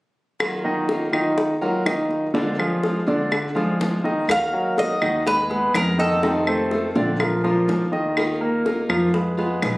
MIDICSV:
0, 0, Header, 1, 7, 480
1, 0, Start_track
1, 0, Key_signature, -6, "minor"
1, 0, Tempo, 485437
1, 397, Time_signature, 4, 2, 24, 8
1, 9667, End_track
2, 0, Start_track
2, 0, Title_t, "Cuban tres"
2, 0, Program_c, 0, 25
2, 4262, Note_on_c, 0, 77, 99
2, 4733, Note_off_c, 0, 77, 0
2, 4737, Note_on_c, 0, 75, 86
2, 5176, Note_off_c, 0, 75, 0
2, 5213, Note_on_c, 0, 71, 91
2, 5654, Note_off_c, 0, 71, 0
2, 5692, Note_on_c, 0, 70, 81
2, 5910, Note_off_c, 0, 70, 0
2, 5929, Note_on_c, 0, 69, 72
2, 7084, Note_off_c, 0, 69, 0
2, 9667, End_track
3, 0, Start_track
3, 0, Title_t, "Grand piano"
3, 0, Program_c, 1, 0
3, 636, Note_on_c, 1, 51, 76
3, 639, Note_on_c, 1, 63, 69
3, 644, Note_on_c, 1, 75, 74
3, 1031, Note_off_c, 1, 51, 0
3, 1033, Note_off_c, 1, 63, 0
3, 1036, Note_off_c, 1, 75, 0
3, 1114, Note_on_c, 1, 51, 74
3, 1118, Note_on_c, 1, 63, 75
3, 1123, Note_on_c, 1, 75, 71
3, 1510, Note_off_c, 1, 51, 0
3, 1513, Note_off_c, 1, 63, 0
3, 1516, Note_off_c, 1, 75, 0
3, 1596, Note_on_c, 1, 54, 67
3, 1599, Note_on_c, 1, 66, 65
3, 1601, Note_on_c, 1, 70, 63
3, 1794, Note_off_c, 1, 54, 0
3, 1796, Note_off_c, 1, 66, 0
3, 1798, Note_off_c, 1, 70, 0
3, 1835, Note_on_c, 1, 51, 66
3, 1836, Note_on_c, 1, 63, 70
3, 1841, Note_on_c, 1, 75, 69
3, 2231, Note_off_c, 1, 51, 0
3, 2232, Note_off_c, 1, 63, 0
3, 2235, Note_off_c, 1, 75, 0
3, 2312, Note_on_c, 1, 50, 70
3, 2315, Note_on_c, 1, 62, 66
3, 2320, Note_on_c, 1, 74, 69
3, 2513, Note_off_c, 1, 50, 0
3, 2515, Note_off_c, 1, 62, 0
3, 2517, Note_off_c, 1, 74, 0
3, 2558, Note_on_c, 1, 53, 66
3, 2561, Note_on_c, 1, 65, 70
3, 2565, Note_on_c, 1, 68, 69
3, 2953, Note_off_c, 1, 53, 0
3, 2955, Note_off_c, 1, 65, 0
3, 2957, Note_off_c, 1, 68, 0
3, 3041, Note_on_c, 1, 50, 74
3, 3042, Note_on_c, 1, 62, 73
3, 3046, Note_on_c, 1, 74, 67
3, 3435, Note_off_c, 1, 50, 0
3, 3436, Note_off_c, 1, 62, 0
3, 3438, Note_off_c, 1, 74, 0
3, 3516, Note_on_c, 1, 53, 68
3, 3520, Note_on_c, 1, 65, 69
3, 3523, Note_on_c, 1, 68, 68
3, 3913, Note_off_c, 1, 53, 0
3, 3915, Note_off_c, 1, 65, 0
3, 3916, Note_off_c, 1, 68, 0
3, 3997, Note_on_c, 1, 51, 72
3, 3999, Note_on_c, 1, 63, 74
3, 4004, Note_on_c, 1, 75, 71
3, 4196, Note_off_c, 1, 51, 0
3, 4197, Note_off_c, 1, 63, 0
3, 4200, Note_off_c, 1, 75, 0
3, 4481, Note_on_c, 1, 54, 67
3, 4483, Note_on_c, 1, 66, 68
3, 4489, Note_on_c, 1, 70, 64
3, 4875, Note_off_c, 1, 54, 0
3, 4876, Note_off_c, 1, 66, 0
3, 4880, Note_off_c, 1, 70, 0
3, 4956, Note_on_c, 1, 51, 75
3, 4960, Note_on_c, 1, 63, 74
3, 4961, Note_on_c, 1, 75, 78
3, 5156, Note_off_c, 1, 51, 0
3, 5158, Note_off_c, 1, 63, 0
3, 5158, Note_off_c, 1, 75, 0
3, 5203, Note_on_c, 1, 56, 67
3, 5206, Note_on_c, 1, 68, 65
3, 5209, Note_on_c, 1, 71, 64
3, 5400, Note_off_c, 1, 56, 0
3, 5401, Note_off_c, 1, 68, 0
3, 5403, Note_off_c, 1, 71, 0
3, 5438, Note_on_c, 1, 56, 74
3, 5443, Note_on_c, 1, 68, 74
3, 5444, Note_on_c, 1, 71, 70
3, 5833, Note_off_c, 1, 56, 0
3, 5836, Note_off_c, 1, 68, 0
3, 5836, Note_off_c, 1, 71, 0
3, 5916, Note_on_c, 1, 51, 78
3, 5919, Note_on_c, 1, 63, 76
3, 5923, Note_on_c, 1, 75, 79
3, 6115, Note_off_c, 1, 51, 0
3, 6116, Note_off_c, 1, 63, 0
3, 6119, Note_off_c, 1, 75, 0
3, 6156, Note_on_c, 1, 51, 69
3, 6161, Note_on_c, 1, 63, 73
3, 6164, Note_on_c, 1, 75, 70
3, 6355, Note_off_c, 1, 51, 0
3, 6357, Note_off_c, 1, 63, 0
3, 6359, Note_off_c, 1, 75, 0
3, 6396, Note_on_c, 1, 57, 70
3, 6400, Note_on_c, 1, 69, 70
3, 6405, Note_on_c, 1, 72, 72
3, 6791, Note_off_c, 1, 57, 0
3, 6793, Note_off_c, 1, 69, 0
3, 6796, Note_off_c, 1, 72, 0
3, 6879, Note_on_c, 1, 50, 77
3, 6882, Note_on_c, 1, 62, 74
3, 6886, Note_on_c, 1, 74, 79
3, 7076, Note_off_c, 1, 50, 0
3, 7078, Note_off_c, 1, 62, 0
3, 7080, Note_off_c, 1, 74, 0
3, 7117, Note_on_c, 1, 53, 64
3, 7118, Note_on_c, 1, 65, 66
3, 7121, Note_on_c, 1, 70, 70
3, 7314, Note_off_c, 1, 53, 0
3, 7315, Note_off_c, 1, 65, 0
3, 7317, Note_off_c, 1, 70, 0
3, 7355, Note_on_c, 1, 53, 76
3, 7357, Note_on_c, 1, 65, 75
3, 7361, Note_on_c, 1, 70, 71
3, 7749, Note_off_c, 1, 53, 0
3, 7751, Note_off_c, 1, 65, 0
3, 7753, Note_off_c, 1, 70, 0
3, 7831, Note_on_c, 1, 51, 77
3, 7837, Note_on_c, 1, 75, 79
3, 8227, Note_off_c, 1, 51, 0
3, 8230, Note_off_c, 1, 75, 0
3, 8314, Note_on_c, 1, 58, 74
3, 8315, Note_on_c, 1, 70, 74
3, 8708, Note_off_c, 1, 58, 0
3, 8709, Note_off_c, 1, 70, 0
3, 8795, Note_on_c, 1, 53, 77
3, 8797, Note_on_c, 1, 65, 77
3, 8802, Note_on_c, 1, 77, 72
3, 8992, Note_off_c, 1, 53, 0
3, 8993, Note_off_c, 1, 65, 0
3, 8996, Note_off_c, 1, 77, 0
3, 9038, Note_on_c, 1, 56, 64
3, 9041, Note_on_c, 1, 68, 66
3, 9045, Note_on_c, 1, 71, 65
3, 9233, Note_off_c, 1, 56, 0
3, 9235, Note_off_c, 1, 68, 0
3, 9237, Note_off_c, 1, 71, 0
3, 9276, Note_on_c, 1, 56, 70
3, 9280, Note_on_c, 1, 68, 74
3, 9283, Note_on_c, 1, 71, 73
3, 9667, Note_off_c, 1, 56, 0
3, 9667, Note_off_c, 1, 68, 0
3, 9667, Note_off_c, 1, 71, 0
3, 9667, End_track
4, 0, Start_track
4, 0, Title_t, "Nylon-string guitar"
4, 0, Program_c, 2, 24
4, 394, Note_on_c, 2, 51, 66
4, 398, Note_on_c, 2, 54, 65
4, 406, Note_on_c, 2, 58, 63
4, 414, Note_on_c, 2, 65, 71
4, 862, Note_off_c, 2, 51, 0
4, 869, Note_off_c, 2, 54, 0
4, 873, Note_off_c, 2, 58, 0
4, 874, Note_on_c, 2, 51, 44
4, 877, Note_off_c, 2, 65, 0
4, 882, Note_on_c, 2, 54, 44
4, 891, Note_on_c, 2, 58, 52
4, 898, Note_on_c, 2, 65, 52
4, 1102, Note_off_c, 2, 65, 0
4, 1107, Note_off_c, 2, 51, 0
4, 1111, Note_off_c, 2, 54, 0
4, 1114, Note_on_c, 2, 65, 53
4, 1115, Note_off_c, 2, 58, 0
4, 1125, Note_on_c, 2, 58, 52
4, 1132, Note_on_c, 2, 54, 46
4, 1347, Note_off_c, 2, 65, 0
4, 1351, Note_off_c, 2, 54, 0
4, 1353, Note_off_c, 2, 58, 0
4, 1595, Note_on_c, 2, 65, 68
4, 1601, Note_on_c, 2, 58, 57
4, 1615, Note_on_c, 2, 54, 53
4, 1828, Note_off_c, 2, 65, 0
4, 1831, Note_off_c, 2, 58, 0
4, 1834, Note_off_c, 2, 54, 0
4, 1840, Note_on_c, 2, 51, 43
4, 1846, Note_on_c, 2, 54, 45
4, 1855, Note_on_c, 2, 58, 50
4, 1859, Note_on_c, 2, 65, 50
4, 2309, Note_off_c, 2, 51, 0
4, 2313, Note_on_c, 2, 46, 69
4, 2314, Note_off_c, 2, 54, 0
4, 2319, Note_off_c, 2, 58, 0
4, 2321, Note_off_c, 2, 65, 0
4, 2321, Note_on_c, 2, 53, 65
4, 2326, Note_on_c, 2, 56, 73
4, 2329, Note_on_c, 2, 62, 75
4, 2335, Note_on_c, 2, 65, 73
4, 2783, Note_off_c, 2, 53, 0
4, 2788, Note_off_c, 2, 46, 0
4, 2789, Note_off_c, 2, 56, 0
4, 2795, Note_on_c, 2, 53, 49
4, 2796, Note_off_c, 2, 62, 0
4, 2799, Note_off_c, 2, 65, 0
4, 2801, Note_on_c, 2, 56, 50
4, 2809, Note_on_c, 2, 62, 47
4, 2815, Note_on_c, 2, 65, 49
4, 3019, Note_off_c, 2, 65, 0
4, 3029, Note_off_c, 2, 53, 0
4, 3029, Note_off_c, 2, 62, 0
4, 3031, Note_on_c, 2, 65, 58
4, 3032, Note_off_c, 2, 56, 0
4, 3040, Note_on_c, 2, 62, 53
4, 3046, Note_on_c, 2, 56, 53
4, 3052, Note_on_c, 2, 53, 52
4, 3261, Note_off_c, 2, 53, 0
4, 3263, Note_off_c, 2, 56, 0
4, 3263, Note_off_c, 2, 62, 0
4, 3267, Note_off_c, 2, 65, 0
4, 3507, Note_on_c, 2, 65, 59
4, 3515, Note_on_c, 2, 62, 59
4, 3523, Note_on_c, 2, 56, 61
4, 3528, Note_on_c, 2, 53, 54
4, 3741, Note_off_c, 2, 53, 0
4, 3745, Note_off_c, 2, 65, 0
4, 3747, Note_off_c, 2, 56, 0
4, 3749, Note_off_c, 2, 62, 0
4, 3753, Note_on_c, 2, 53, 47
4, 3759, Note_on_c, 2, 56, 45
4, 3766, Note_on_c, 2, 62, 48
4, 3769, Note_on_c, 2, 65, 50
4, 4220, Note_off_c, 2, 53, 0
4, 4224, Note_on_c, 2, 51, 67
4, 4231, Note_off_c, 2, 56, 0
4, 4235, Note_off_c, 2, 62, 0
4, 4236, Note_off_c, 2, 65, 0
4, 4237, Note_on_c, 2, 58, 69
4, 4241, Note_on_c, 2, 63, 69
4, 4246, Note_on_c, 2, 66, 76
4, 4698, Note_off_c, 2, 51, 0
4, 4705, Note_off_c, 2, 58, 0
4, 4710, Note_on_c, 2, 51, 46
4, 4712, Note_off_c, 2, 63, 0
4, 4715, Note_off_c, 2, 66, 0
4, 4717, Note_on_c, 2, 58, 51
4, 4722, Note_on_c, 2, 63, 46
4, 4728, Note_on_c, 2, 66, 51
4, 4945, Note_off_c, 2, 66, 0
4, 4947, Note_off_c, 2, 51, 0
4, 4950, Note_off_c, 2, 58, 0
4, 4953, Note_off_c, 2, 63, 0
4, 4957, Note_on_c, 2, 66, 55
4, 4966, Note_on_c, 2, 63, 58
4, 4977, Note_on_c, 2, 58, 54
4, 5190, Note_off_c, 2, 66, 0
4, 5195, Note_off_c, 2, 63, 0
4, 5197, Note_off_c, 2, 58, 0
4, 5431, Note_on_c, 2, 59, 68
4, 5452, Note_on_c, 2, 56, 54
4, 5667, Note_off_c, 2, 59, 0
4, 5669, Note_on_c, 2, 51, 48
4, 5672, Note_off_c, 2, 56, 0
4, 5684, Note_on_c, 2, 56, 50
4, 5692, Note_on_c, 2, 59, 57
4, 6145, Note_off_c, 2, 51, 0
4, 6153, Note_off_c, 2, 56, 0
4, 6153, Note_on_c, 2, 48, 71
4, 6157, Note_off_c, 2, 59, 0
4, 6161, Note_on_c, 2, 51, 70
4, 6166, Note_on_c, 2, 57, 71
4, 6172, Note_on_c, 2, 60, 79
4, 6178, Note_on_c, 2, 65, 70
4, 6624, Note_off_c, 2, 51, 0
4, 6627, Note_off_c, 2, 48, 0
4, 6629, Note_off_c, 2, 57, 0
4, 6636, Note_off_c, 2, 60, 0
4, 6636, Note_on_c, 2, 51, 49
4, 6639, Note_off_c, 2, 65, 0
4, 6640, Note_on_c, 2, 57, 50
4, 6650, Note_on_c, 2, 60, 55
4, 6653, Note_on_c, 2, 65, 54
4, 6866, Note_off_c, 2, 65, 0
4, 6868, Note_off_c, 2, 51, 0
4, 6871, Note_off_c, 2, 57, 0
4, 6875, Note_off_c, 2, 60, 0
4, 6878, Note_on_c, 2, 65, 67
4, 6888, Note_on_c, 2, 60, 60
4, 6891, Note_on_c, 2, 57, 57
4, 6901, Note_on_c, 2, 51, 49
4, 7109, Note_off_c, 2, 65, 0
4, 7113, Note_off_c, 2, 51, 0
4, 7114, Note_off_c, 2, 60, 0
4, 7116, Note_off_c, 2, 57, 0
4, 7362, Note_on_c, 2, 65, 67
4, 7376, Note_on_c, 2, 62, 62
4, 7384, Note_on_c, 2, 58, 57
4, 7591, Note_off_c, 2, 65, 0
4, 7592, Note_off_c, 2, 58, 0
4, 7592, Note_on_c, 2, 53, 47
4, 7597, Note_off_c, 2, 62, 0
4, 7604, Note_on_c, 2, 58, 51
4, 7609, Note_on_c, 2, 62, 51
4, 7612, Note_on_c, 2, 65, 53
4, 8065, Note_off_c, 2, 53, 0
4, 8071, Note_off_c, 2, 58, 0
4, 8073, Note_off_c, 2, 62, 0
4, 8075, Note_off_c, 2, 65, 0
4, 8081, Note_on_c, 2, 51, 69
4, 8086, Note_on_c, 2, 58, 69
4, 8088, Note_on_c, 2, 63, 78
4, 8091, Note_on_c, 2, 65, 68
4, 8099, Note_on_c, 2, 70, 77
4, 8542, Note_off_c, 2, 58, 0
4, 8548, Note_off_c, 2, 51, 0
4, 8549, Note_off_c, 2, 63, 0
4, 8554, Note_off_c, 2, 65, 0
4, 8554, Note_on_c, 2, 58, 51
4, 8557, Note_off_c, 2, 70, 0
4, 8561, Note_on_c, 2, 63, 48
4, 8570, Note_on_c, 2, 65, 56
4, 8577, Note_on_c, 2, 70, 53
4, 8780, Note_off_c, 2, 70, 0
4, 8785, Note_off_c, 2, 58, 0
4, 8788, Note_off_c, 2, 65, 0
4, 8789, Note_off_c, 2, 63, 0
4, 8792, Note_on_c, 2, 70, 65
4, 8800, Note_on_c, 2, 65, 60
4, 8807, Note_on_c, 2, 63, 51
4, 8815, Note_on_c, 2, 58, 54
4, 9023, Note_off_c, 2, 70, 0
4, 9027, Note_off_c, 2, 58, 0
4, 9028, Note_off_c, 2, 65, 0
4, 9031, Note_off_c, 2, 63, 0
4, 9269, Note_on_c, 2, 65, 69
4, 9283, Note_on_c, 2, 59, 67
4, 9295, Note_on_c, 2, 56, 57
4, 9501, Note_off_c, 2, 65, 0
4, 9504, Note_off_c, 2, 56, 0
4, 9508, Note_off_c, 2, 59, 0
4, 9509, Note_on_c, 2, 53, 46
4, 9515, Note_on_c, 2, 56, 48
4, 9525, Note_on_c, 2, 59, 51
4, 9531, Note_on_c, 2, 65, 50
4, 9667, Note_off_c, 2, 53, 0
4, 9667, Note_off_c, 2, 56, 0
4, 9667, Note_off_c, 2, 59, 0
4, 9667, Note_off_c, 2, 65, 0
4, 9667, End_track
5, 0, Start_track
5, 0, Title_t, "Upright bass"
5, 0, Program_c, 3, 32
5, 4237, Note_on_c, 3, 39, 84
5, 4920, Note_off_c, 3, 39, 0
5, 4963, Note_on_c, 3, 39, 89
5, 5642, Note_off_c, 3, 39, 0
5, 5678, Note_on_c, 3, 41, 86
5, 6815, Note_off_c, 3, 41, 0
5, 6876, Note_on_c, 3, 34, 93
5, 7557, Note_off_c, 3, 34, 0
5, 7596, Note_on_c, 3, 39, 83
5, 8731, Note_off_c, 3, 39, 0
5, 8796, Note_on_c, 3, 41, 86
5, 9474, Note_off_c, 3, 41, 0
5, 9516, Note_on_c, 3, 34, 87
5, 9667, Note_off_c, 3, 34, 0
5, 9667, End_track
6, 0, Start_track
6, 0, Title_t, "Muted nylon-string guitar strokes"
6, 1359, Note_on_c, 9, 29, 45
6, 1457, Note_off_c, 9, 29, 0
6, 3270, Note_on_c, 9, 29, 48
6, 3369, Note_off_c, 9, 29, 0
6, 5196, Note_on_c, 9, 29, 52
6, 5295, Note_off_c, 9, 29, 0
6, 7117, Note_on_c, 9, 29, 56
6, 7216, Note_off_c, 9, 29, 0
6, 9031, Note_on_c, 9, 29, 54
6, 9129, Note_off_c, 9, 29, 0
6, 9667, End_track
7, 0, Start_track
7, 0, Title_t, "Drums"
7, 398, Note_on_c, 9, 60, 62
7, 399, Note_on_c, 9, 75, 54
7, 497, Note_off_c, 9, 60, 0
7, 498, Note_off_c, 9, 75, 0
7, 879, Note_on_c, 9, 60, 55
7, 978, Note_off_c, 9, 60, 0
7, 1121, Note_on_c, 9, 75, 58
7, 1123, Note_on_c, 9, 60, 31
7, 1219, Note_off_c, 9, 75, 0
7, 1222, Note_off_c, 9, 60, 0
7, 1361, Note_on_c, 9, 60, 60
7, 1460, Note_off_c, 9, 60, 0
7, 1603, Note_on_c, 9, 60, 31
7, 1702, Note_off_c, 9, 60, 0
7, 1842, Note_on_c, 9, 60, 31
7, 1842, Note_on_c, 9, 61, 75
7, 1842, Note_on_c, 9, 75, 59
7, 1941, Note_off_c, 9, 60, 0
7, 1941, Note_off_c, 9, 61, 0
7, 1941, Note_off_c, 9, 75, 0
7, 2082, Note_on_c, 9, 60, 29
7, 2181, Note_off_c, 9, 60, 0
7, 2321, Note_on_c, 9, 60, 64
7, 2420, Note_off_c, 9, 60, 0
7, 2566, Note_on_c, 9, 75, 58
7, 2665, Note_off_c, 9, 75, 0
7, 2803, Note_on_c, 9, 60, 51
7, 2902, Note_off_c, 9, 60, 0
7, 3045, Note_on_c, 9, 60, 32
7, 3143, Note_off_c, 9, 60, 0
7, 3281, Note_on_c, 9, 60, 61
7, 3283, Note_on_c, 9, 75, 61
7, 3380, Note_off_c, 9, 60, 0
7, 3382, Note_off_c, 9, 75, 0
7, 3526, Note_on_c, 9, 60, 31
7, 3625, Note_off_c, 9, 60, 0
7, 3767, Note_on_c, 9, 60, 32
7, 3767, Note_on_c, 9, 61, 75
7, 3866, Note_off_c, 9, 60, 0
7, 3866, Note_off_c, 9, 61, 0
7, 4009, Note_on_c, 9, 60, 32
7, 4108, Note_off_c, 9, 60, 0
7, 4241, Note_on_c, 9, 75, 60
7, 4249, Note_on_c, 9, 60, 60
7, 4340, Note_off_c, 9, 75, 0
7, 4347, Note_off_c, 9, 60, 0
7, 4726, Note_on_c, 9, 60, 55
7, 4825, Note_off_c, 9, 60, 0
7, 4962, Note_on_c, 9, 75, 62
7, 4968, Note_on_c, 9, 60, 33
7, 5060, Note_off_c, 9, 75, 0
7, 5067, Note_off_c, 9, 60, 0
7, 5207, Note_on_c, 9, 60, 62
7, 5306, Note_off_c, 9, 60, 0
7, 5447, Note_on_c, 9, 60, 33
7, 5545, Note_off_c, 9, 60, 0
7, 5680, Note_on_c, 9, 75, 62
7, 5687, Note_on_c, 9, 60, 33
7, 5687, Note_on_c, 9, 61, 81
7, 5779, Note_off_c, 9, 75, 0
7, 5786, Note_off_c, 9, 60, 0
7, 5786, Note_off_c, 9, 61, 0
7, 5924, Note_on_c, 9, 60, 33
7, 6023, Note_off_c, 9, 60, 0
7, 6162, Note_on_c, 9, 60, 62
7, 6261, Note_off_c, 9, 60, 0
7, 6400, Note_on_c, 9, 75, 67
7, 6498, Note_off_c, 9, 75, 0
7, 6637, Note_on_c, 9, 60, 52
7, 6736, Note_off_c, 9, 60, 0
7, 6883, Note_on_c, 9, 60, 34
7, 6982, Note_off_c, 9, 60, 0
7, 7118, Note_on_c, 9, 60, 61
7, 7120, Note_on_c, 9, 75, 64
7, 7217, Note_off_c, 9, 60, 0
7, 7218, Note_off_c, 9, 75, 0
7, 7361, Note_on_c, 9, 60, 34
7, 7460, Note_off_c, 9, 60, 0
7, 7604, Note_on_c, 9, 60, 31
7, 7604, Note_on_c, 9, 61, 75
7, 7702, Note_off_c, 9, 60, 0
7, 7702, Note_off_c, 9, 61, 0
7, 7840, Note_on_c, 9, 60, 32
7, 7939, Note_off_c, 9, 60, 0
7, 8077, Note_on_c, 9, 75, 64
7, 8084, Note_on_c, 9, 60, 60
7, 8176, Note_off_c, 9, 75, 0
7, 8182, Note_off_c, 9, 60, 0
7, 8561, Note_on_c, 9, 60, 53
7, 8660, Note_off_c, 9, 60, 0
7, 8799, Note_on_c, 9, 75, 66
7, 8801, Note_on_c, 9, 60, 32
7, 8897, Note_off_c, 9, 75, 0
7, 8900, Note_off_c, 9, 60, 0
7, 9038, Note_on_c, 9, 60, 62
7, 9137, Note_off_c, 9, 60, 0
7, 9280, Note_on_c, 9, 60, 34
7, 9379, Note_off_c, 9, 60, 0
7, 9516, Note_on_c, 9, 75, 64
7, 9520, Note_on_c, 9, 60, 32
7, 9520, Note_on_c, 9, 61, 77
7, 9615, Note_off_c, 9, 75, 0
7, 9618, Note_off_c, 9, 60, 0
7, 9618, Note_off_c, 9, 61, 0
7, 9667, End_track
0, 0, End_of_file